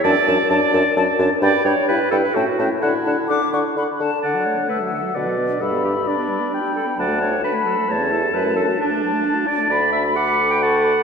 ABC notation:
X:1
M:3/4
L:1/16
Q:1/4=131
K:D
V:1 name="Flute"
a2 a2 a2 a2 a2 a2 | b2 b2 b2 b2 a2 a2 | a2 a2 d'2 c'2 b2 a2 | f12 |
b12 | a12- | a12 | [K:Bm] b4 d'4 c'2 b2 |]
V:2 name="Oboe"
a2 a2 a2 a2 a2 a2 | g2 g2 g2 g2 g2 g2 | f2 f2 f2 f2 f2 f2 | f4 e4 d4 |
e4 d4 g4 | f4 b4 a4- | a4 a8 | [K:Bm] b8 a4 |]
V:3 name="Clarinet"
d4 d6 z2 | d2 c2 B2 A B F3 E | E4 D4 z4 | d2 c2 B2 A2 B4 |
A2 G2 D6 A2 | d2 c2 B2 A2 c2 A2 | B2 A2 D6 d2 | [K:Bm] d2 e2 f3 g f4 |]
V:4 name="French horn"
D2 D2 D2 D2 D2 D2 | D2 D2 E2 E2 C2 C2 | D2 D2 D2 D2 D2 D2 | D, F, A, D A, F, D, F, D, F, B, D |
G, B, D G D B, G, B, D G D B, | F, A, D F D A, F, A, A, C E G | F, A, D F D A, F, A, D F D A, | [K:Bm] F4 A8 |]
V:5 name="Bassoon" clef=bass
F,,2 F,,2 F,,2 F,,2 F,,2 F,,2 | G,,2 G,,2 G,,2 G,,2 A,,2 A,,2 | D,2 D,2 D,2 D,2 D,2 D,2 | D,4 z4 B,,4 |
G,,4 z8 | D,,4 z4 E,,4 | F,,4 z8 | [K:Bm] D,,12 |]